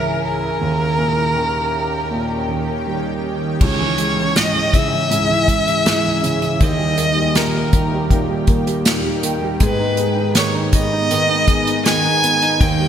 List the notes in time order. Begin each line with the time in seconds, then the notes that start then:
Already playing: C#2 G#2 C#3 E3 E4 G#4 A#4
0.25 A#4
0.61 D#2 D#3 C#4 G4
0.98 A#2
1.36 D#3
2.11 A#2
2.48 D#3
2.87 G3
3.60 C#2 C#3 G#3 C#4 E4 G#4 C#5, kick, crash
3.79 E3
3.98 G#3, closed hi-hat
4.17 E3
4.36 G#2 D#5, snare, closed hi-hat
4.54 E3
4.73 C#3 C#4 E4 G#4 E5, kick, closed hi-hat
4.92 E3
5.10 G#2 G#3 C#4 E4 G#4, closed hi-hat
5.29 E3
5.47 G#3, kick, closed hi-hat
5.67 E3, closed hi-hat
5.85 G#2 G#3 C#4 E4 G#4, snare, closed hi-hat
6.04 E3
6.23 C#3, closed hi-hat
6.42 E3, closed hi-hat
6.60 D#2 D#3 A#3 D#4 G4 A#4 D#5, kick, closed hi-hat
6.79 G3
6.97 A#3, closed hi-hat
7.16 G3
7.35 A#2 A#4, snare, closed hi-hat
7.55 G3
7.73 D#3 D#4 G4 A#4, kick, closed hi-hat
7.93 G3
8.10 A#2 A#3 D#4 G4 A#4, kick, closed hi-hat
8.29 G3
8.47 A#3, kick, closed hi-hat
8.67 G3, closed hi-hat
8.85 A#2 A#3 D#4 G4 A#4, snare, closed hi-hat
9.04 G3
9.23 D#3, closed hi-hat
9.42 G3
9.60 G#2 D#3 G#3 B3 G#4 B4, kick, closed hi-hat
9.80 D#4
9.97 G#4, closed hi-hat
10.16 D#4
10.35 D#3 C#5, snare, closed hi-hat
10.55 D#4
10.72 G#3 B3 G#4 B4 D#5, kick, closed hi-hat
10.93 D#4
11.10 D#3 G#3 B3 G#4 B4, closed hi-hat
11.30 D#4
11.48 G#4, kick, closed hi-hat
11.67 D#4, closed hi-hat
11.85 D#3 G#3 B3 G#4 B4 G#5, snare, closed hi-hat
12.04 D#4
12.23 B3, closed hi-hat
12.42 D#4, closed hi-hat
12.60 D#2 D#3 A#3 D#4 G4 A#4 G5, kick, closed hi-hat
12.80 G3